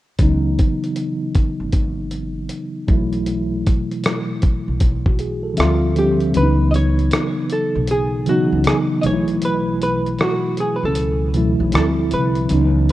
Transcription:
0.19 0.55 C#2 medium
0.19 1.65 C#3 medium
0.19 1.65 E3 medium
0.19 1.66 F#3 medium
0.19 1.66 B3 medium
0.19 kick loud
0.19 closed hi-hat medium
0.23 1.67 D#4 medium
0.59 kick medium
0.59 closed hi-hat medium
0.84 closed hi-hat soft
0.96 closed hi-hat medium
1.35 kick medium
1.35 closed hi-hat medium
1.60 2.46 G#1 medium
1.73 kick medium
1.73 closed hi-hat medium
2.11 closed hi-hat medium
2.49 closed hi-hat medium
2.87 3.61 B1 medium
2.87 4.34 B2 medium
2.87 4.34 E3 medium
2.87 4.35 F#3 medium
2.87 4.35 A3 medium
2.87 4.36 E4 medium
2.87 kick loud
2.87 closed hi-hat medium
3.13 closed hi-hat soft
3.26 closed hi-hat medium
3.67 kick medium
3.67 closed hi-hat medium
3.91 closed hi-hat soft
4.04 cross-stick loud
4.04 closed hi-hat medium
4.42 kick medium
4.42 closed hi-hat medium
4.68 5.54 B1 medium
4.80 kick medium
4.80 closed hi-hat medium
5.06 5.20 F#4 medium
5.06 kick medium
5.19 5.43 G#4 medium
5.19 closed hi-hat medium
5.43 5.80 A4 medium
5.54 5.92 D3 medium
5.54 5.93 F3 medium
5.54 5.93 G3 medium
5.54 5.94 C4 medium
5.54 closed hi-hat medium
5.58 6.31 D2 medium
5.58 5.95 F4 medium
5.58 5.94 E5 medium
5.58 cross-stick loud
5.95 6.32 D3 medium
5.95 6.33 F3 medium
5.95 6.33 G3 medium
5.95 6.34 C4 medium
5.95 6.37 G4 medium
5.95 6.34 G4 medium
5.95 closed hi-hat medium
6.20 closed hi-hat soft
6.32 7.08 C#2 medium
6.32 7.79 C#3 medium
6.32 7.80 E3 medium
6.32 7.80 F#3 medium
6.32 7.81 B3 medium
6.32 6.44 D4 medium
6.32 closed hi-hat medium
6.37 6.70 B4 loud
6.43 7.85 D#4 medium
6.71 6.74 D#5 medium
6.71 closed hi-hat medium
6.76 7.47 C#5 medium
6.99 closed hi-hat soft
7.11 cross-stick loud
7.11 closed hi-hat medium
7.50 7.87 A4 medium
7.50 closed hi-hat medium
7.75 8.48 B1 medium
7.87 8.29 G#4 medium
7.87 closed hi-hat medium
8.26 9.03 C#3 medium
8.26 9.02 E3 medium
8.26 9.03 F#3 medium
8.26 9.05 B3 medium
8.26 9.05 D#4 medium
8.26 8.68 F#4 medium
8.26 closed hi-hat medium
8.52 8.65 C#2 medium
8.64 8.76 G#4 medium
8.64 cross-stick loud
8.64 closed hi-hat medium
9.01 10.15 B1 medium
9.01 10.49 B2 medium
9.01 10.50 E3 medium
9.01 10.50 F#3 medium
9.01 9.05 D#5 medium
9.01 closed hi-hat medium
9.06 10.51 A3 medium
9.06 9.13 D#4 medium
9.06 9.45 C#5 loud
9.13 10.54 E4 medium
9.28 closed hi-hat soft
9.42 9.82 B4 loud
9.42 closed hi-hat medium
9.82 10.21 B4 medium
9.82 closed hi-hat medium
10.06 closed hi-hat soft
10.18 10.60 F#4 medium
10.18 cross-stick loud
10.18 closed hi-hat medium
10.57 10.75 G#4 medium
10.57 closed hi-hat medium
10.76 10.84 B4 medium
10.83 11.56 C#2 medium
10.83 11.74 A4 loud
10.95 closed hi-hat medium
11.34 11.73 B2 medium
11.34 11.73 E3 medium
11.34 11.73 F#3 medium
11.34 11.74 A3 medium
11.34 11.73 E4 medium
11.34 closed hi-hat medium
11.60 11.72 B1 medium
11.70 12.10 D2 loud
11.70 12.45 D3 medium
11.70 12.45 F3 medium
11.70 12.46 G3 medium
11.70 12.46 C4 medium
11.70 closed hi-hat medium
11.74 12.47 E4 medium
11.74 11.85 A4 medium
11.74 cross-stick loud
12.11 12.48 C2 medium
12.11 12.85 B4 loud
12.11 closed hi-hat medium
12.35 closed hi-hat soft
12.48 12.92 C#2 loud
12.48 12.92 C#3 medium
12.48 12.92 E3 medium
12.48 12.92 F#3 medium
12.48 12.92 B3 medium
12.48 closed hi-hat medium
12.53 12.92 D#4 medium

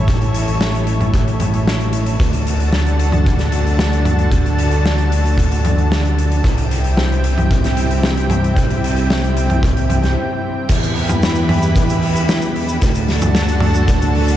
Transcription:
0.00 2.17 A1 medium
0.00 2.16 E4 medium
0.00 2.16 A4 medium
0.00 2.16 C#5 medium
0.08 kick loud
0.08 closed hi-hat medium
0.21 closed hi-hat soft
0.34 closed hi-hat loud
0.48 closed hi-hat medium
0.60 snare loud
0.60 closed hi-hat medium
0.75 closed hi-hat medium
0.87 closed hi-hat medium
1.01 closed hi-hat medium
1.01 mid tom medium
1.14 kick loud
1.14 closed hi-hat medium
1.28 closed hi-hat medium
1.40 closed hi-hat medium
1.40 mid tom medium
1.54 closed hi-hat medium
1.68 snare loud
1.68 closed hi-hat medium
1.81 closed hi-hat medium
1.93 closed hi-hat medium
2.06 closed hi-hat medium
2.20 6.42 D2 medium
2.20 6.41 D3 medium
2.20 6.41 D4 medium
2.20 6.40 F#4 medium
2.20 6.41 A4 medium
2.20 6.40 A5 medium
2.20 kick loud
2.20 closed hi-hat medium
2.33 closed hi-hat medium
2.47 closed hi-hat medium
2.60 closed hi-hat medium
2.73 snare loud
2.73 closed hi-hat medium
2.86 closed hi-hat soft
2.99 closed hi-hat medium
3.12 closed hi-hat soft
3.12 mid tom medium
3.26 kick loud
3.26 closed hi-hat medium
3.39 snare soft
3.39 closed hi-hat medium
3.52 closed hi-hat medium
3.67 closed hi-hat soft
3.79 snare loud
3.79 closed hi-hat medium
3.93 closed hi-hat medium
4.05 closed hi-hat loud
4.05 mid tom medium
4.19 closed hi-hat medium
4.32 kick loud
4.32 closed hi-hat medium
4.46 closed hi-hat medium
4.58 closed hi-hat medium
4.71 closed hi-hat medium
4.86 snare loud
4.86 closed hi-hat medium
4.99 closed hi-hat soft
5.12 closed hi-hat medium
5.26 closed hi-hat medium
5.38 kick loud
5.38 closed hi-hat medium
5.52 closed hi-hat medium
5.65 closed hi-hat medium
5.65 mid tom medium
5.78 closed hi-hat soft
5.92 snare loud
5.92 closed hi-hat medium
6.05 closed hi-hat medium
6.18 closed hi-hat medium
6.32 closed hi-hat medium
6.44 10.16 C2 medium
6.44 10.65 C3 medium
6.44 10.65 C4 medium
6.44 10.65 E4 medium
6.44 10.65 G4 medium
6.44 10.65 G5 medium
6.44 kick loud
6.44 closed hi-hat medium
6.58 closed hi-hat medium
6.71 closed hi-hat loud
6.84 closed hi-hat medium
6.97 snare loud
6.97 closed hi-hat medium
7.12 closed hi-hat soft
7.24 closed hi-hat medium
7.38 closed hi-hat medium
7.38 mid tom medium
7.51 kick loud
7.51 closed hi-hat medium
7.64 snare soft
7.64 closed hi-hat medium
7.77 closed hi-hat medium
7.91 closed hi-hat medium
8.03 snare loud
8.03 closed hi-hat medium
8.17 closed hi-hat medium
8.30 closed hi-hat medium
8.30 mid tom medium
8.44 closed hi-hat medium
8.57 kick loud
8.57 closed hi-hat medium
8.70 closed hi-hat soft
8.84 closed hi-hat medium
8.96 closed hi-hat medium
9.10 snare loud
9.10 closed hi-hat medium
9.24 closed hi-hat medium
9.37 closed hi-hat medium
9.50 closed hi-hat soft
9.50 mid tom medium
9.63 kick loud
9.63 closed hi-hat medium
9.77 closed hi-hat medium
9.90 closed hi-hat loud
9.90 mid tom medium
10.03 snare soft
10.03 closed hi-hat medium
10.69 12.79 E2 medium
10.69 12.80 E3 medium
10.69 12.80 E4 medium
10.69 12.80 G4 medium
10.69 12.80 B4 medium
10.69 12.80 B5 medium
10.69 kick loud
10.69 closed hi-hat medium
10.69 crash loud
10.69 cabasa medium
10.83 closed hi-hat medium
10.83 cabasa soft
10.96 open hi-hat medium
11.08 closed hi-hat medium
11.08 mid tom medium
11.08 cabasa medium
11.23 snare loud
11.23 closed hi-hat medium
11.23 cabasa medium
11.35 closed hi-hat medium
11.35 cabasa soft
11.49 open hi-hat loud
11.49 mid tom medium
11.62 closed hi-hat medium
11.62 cabasa medium
11.76 kick loud
11.76 closed hi-hat medium
11.76 cabasa medium
11.90 closed hi-hat medium
11.90 cabasa medium
12.02 open hi-hat medium
12.16 closed hi-hat medium
12.16 cabasa medium
12.29 snare loud
12.29 closed hi-hat medium
12.29 cabasa medium
12.42 closed hi-hat medium
12.42 cabasa soft
12.56 open hi-hat medium
12.69 closed hi-hat medium
12.69 cabasa medium
12.81 14.37 D2 medium
12.81 14.37 D3 medium
12.81 14.37 D4 medium
12.81 14.37 F#4 medium
12.81 14.37 A4 medium
12.81 14.37 A5 medium
12.81 kick loud
12.81 closed hi-hat medium
12.81 cabasa medium
12.95 closed hi-hat medium
12.95 cabasa medium
13.08 snare soft
13.08 open hi-hat loud
13.22 closed hi-hat medium
13.22 mid tom medium
13.22 cabasa medium
13.35 snare loud
13.35 closed hi-hat medium
13.35 cabasa medium
13.48 closed hi-hat medium
13.48 cabasa soft
13.60 open hi-hat medium
13.60 mid tom loud
13.74 closed hi-hat medium
13.74 cabasa medium
13.88 kick loud
13.88 closed hi-hat medium
13.88 cabasa medium
14.02 closed hi-hat medium
14.02 cabasa soft
14.15 open hi-hat medium
14.28 closed hi-hat medium
14.28 cabasa medium

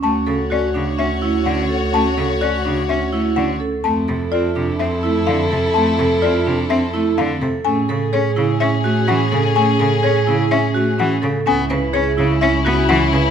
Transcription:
0.03 3.71 D2 medium
0.03 0.21 A3 medium
0.03 0.34 C#4 medium
0.03 3.56 F#4 medium
0.03 3.57 F#4 medium
0.03 3.57 C#5 medium
0.03 0.34 A5 medium
0.26 0.45 C#3 medium
0.26 0.58 A4 medium
0.50 0.69 C#4 medium
0.50 0.82 F#4 medium
0.50 0.82 D5 medium
0.74 0.93 C#3 medium
0.74 1.06 D4 medium
0.98 1.29 C#4 medium
0.98 1.16 C#4 medium
0.98 1.30 E5 medium
1.22 1.40 A3 medium
1.22 1.53 E4 medium
1.45 1.64 D3 medium
1.45 1.77 C#4 medium
1.45 1.77 F#5 medium
1.69 2.01 A4 medium
1.93 2.12 A3 medium
1.93 2.25 C#4 medium
1.93 2.25 A5 medium
2.17 2.35 C#3 medium
2.17 2.48 A4 medium
2.41 2.60 C#4 medium
2.41 2.72 F#4 medium
2.41 2.72 D5 medium
2.65 2.83 C#3 medium
2.65 2.96 D4 medium
2.89 3.20 C#4 medium
2.89 3.07 C#4 medium
2.89 3.20 E5 medium
3.12 3.31 A3 medium
3.12 3.44 E4 medium
3.36 3.54 D3 medium
3.36 3.68 C#4 medium
3.36 3.68 F#5 medium
3.60 3.91 A4 medium
3.84 7.52 F2 medium
3.84 4.02 A3 medium
3.84 4.15 C4 medium
3.84 7.38 E4 medium
3.84 7.37 A4 medium
3.84 7.38 A4 medium
3.84 4.15 A5 medium
4.08 4.26 C3 medium
4.08 4.39 A4 medium
4.32 4.50 C4 medium
4.32 4.63 F4 medium
4.32 4.63 D5 medium
4.56 4.74 C3 medium
4.56 4.87 D4 medium
4.79 4.97 C4 medium
4.79 5.11 C4 medium
4.79 5.11 E5 medium
5.03 5.21 A3 medium
5.03 5.34 E4 medium
5.27 5.45 D3 medium
5.27 5.58 C4 medium
5.27 5.58 F5 medium
5.51 5.69 C3 medium
5.51 5.82 A4 medium
5.74 5.93 A3 medium
5.74 6.06 C4 medium
5.74 6.06 A5 medium
5.98 6.17 C3 medium
5.98 6.30 A4 medium
6.22 6.41 C4 medium
6.22 6.53 F4 medium
6.22 6.53 D5 medium
6.46 6.64 C3 medium
6.46 6.77 D4 medium
6.70 6.88 C4 medium
6.70 7.01 C4 medium
6.70 7.01 E5 medium
6.94 7.12 A3 medium
6.94 7.25 E4 medium
7.18 7.36 D3 medium
7.18 7.49 C4 medium
7.18 7.49 F5 medium
7.42 7.59 C3 medium
7.42 7.73 A4 medium
7.65 11.33 A2 medium
7.65 7.83 A3 medium
7.65 11.18 C#4 medium
7.65 7.96 C#4 medium
7.65 11.18 G#4 medium
7.65 11.19 G#4 medium
7.65 7.96 G#5 medium
7.89 8.07 C#3 medium
7.89 8.20 A4 medium
8.13 8.31 C#4 medium
8.13 8.44 G#4 medium
8.13 8.44 C#5 medium
8.36 8.55 C#3 medium
8.36 8.68 E4 medium
8.60 8.91 C#4 medium
8.60 8.78 C#4 medium
8.60 8.91 E5 medium
8.84 9.02 A3 medium
8.84 9.15 F#4 loud
9.08 9.26 E3 medium
9.08 9.39 C#4 medium
9.08 9.39 F#5 medium
9.32 9.50 C#3 medium
9.32 9.63 A4 medium
9.55 9.73 A3 medium
9.55 9.87 C#4 medium
9.55 9.87 G#5 medium
9.79 9.98 C#3 medium
9.79 10.10 A4 medium
10.03 10.21 C#4 medium
10.03 10.34 G#4 medium
10.03 10.35 C#5 medium
10.27 10.45 C#3 loud
10.27 10.58 E4 medium
10.51 10.82 C#4 medium
10.51 10.69 C#4 medium
10.51 10.82 E5 medium
10.74 10.93 A3 medium
10.74 11.06 F#4 loud
10.98 11.17 E3 loud
10.98 11.30 C#4 medium
10.98 11.30 F#5 medium
11.22 11.41 C#3 medium
11.22 11.53 A4 medium
11.46 13.30 C#2 medium
11.46 11.64 B3 loud
11.46 11.77 C#4 medium
11.46 13.30 C#4 medium
11.46 13.30 E4 medium
11.46 11.78 G#5 loud
11.70 11.88 C#3 medium
11.70 12.01 B4 medium
11.93 12.12 C#4 medium
11.93 12.25 G#4 loud
11.93 12.25 C#5 medium
12.17 12.36 C#3 medium
12.17 12.49 E4 medium
12.41 12.72 C#4 medium
12.41 12.60 C#4 medium
12.41 12.72 E5 medium
12.65 12.83 B3 medium
12.65 12.96 F#4 loud
12.89 13.07 E3 loud
12.89 13.20 C#4 medium
12.89 13.20 F#5 medium
13.13 13.30 C#3 medium
13.13 13.30 B4 medium

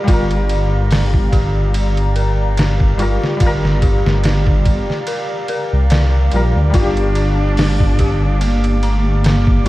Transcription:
0.00 0.04 G3 medium
0.00 2.93 G3 medium
0.00 0.08 F4 medium
0.00 0.09 F4 medium
0.00 9.69 G4 medium
0.00 0.13 A#4 medium
0.00 2.16 A#4 medium
0.00 9.69 D5 medium
0.00 9.69 F5 medium
0.00 6.75 A#5 medium
0.08 3.18 G1 loud
0.08 0.48 F4 medium
0.08 2.95 F4 medium
0.08 kick loud
0.08 ride medium
0.13 2.98 A#4 loud
0.31 ride soft
0.49 ride medium
0.91 snare loud
0.91 open hi-hat medium
1.14 kick medium
1.32 2.12 G4 medium
1.32 kick medium
1.32 ride medium
1.74 ride medium
1.97 ride soft
2.16 2.96 A#4 medium
2.16 ride medium
2.57 snare loud
2.57 ride medium
2.80 kick loud
2.98 3.35 G3 medium
2.98 3.79 F4 loud
2.98 3.37 F4 medium
2.98 ride medium
3.02 3.38 A#4 medium
3.23 snare soft
3.37 6.26 G3 medium
3.37 kick loud
3.37 ride medium
3.41 4.01 G1 medium
3.41 6.28 F4 medium
3.46 6.31 A#4 loud
3.65 snare soft
3.82 5.04 G4 medium
3.82 kick loud
3.82 ride medium
4.06 4.85 G1 loud
4.06 snare medium
4.24 snare loud
4.24 ride medium
4.47 kick medium
4.66 kick medium
4.66 ride medium
4.90 snare soft
5.07 5.47 A#4 medium
5.07 ride medium
5.48 5.89 A#4 loud
5.48 ride medium
5.73 6.29 C2 loud
5.90 6.29 D5 medium
5.90 snare loud
5.90 ride medium
6.31 6.53 A#1 medium
6.31 6.69 G3 medium
6.31 6.70 F4 medium
6.31 ride medium
6.36 6.71 A#4 medium
6.56 6.72 D2 loud
6.70 9.59 G3 medium
6.70 9.69 D6 medium
6.70 kick loud
6.70 ride medium
6.74 9.69 G1 loud
6.74 8.43 D4 loud
6.74 7.14 F4 loud
6.74 9.62 F4 medium
6.79 9.64 G4 loud
6.97 ride soft
7.15 ride medium
7.57 snare loud
7.57 open hi-hat medium
7.80 kick medium
7.99 8.79 G4 medium
7.99 kick medium
7.99 ride medium
8.41 8.83 A#3 medium
8.41 ride medium
8.64 ride soft
8.83 9.26 A3 medium
8.83 9.62 A#5 medium
8.83 ride medium
9.24 9.66 A#3 medium
9.24 snare loud
9.24 ride medium
9.47 kick loud
9.65 9.69 G3 medium

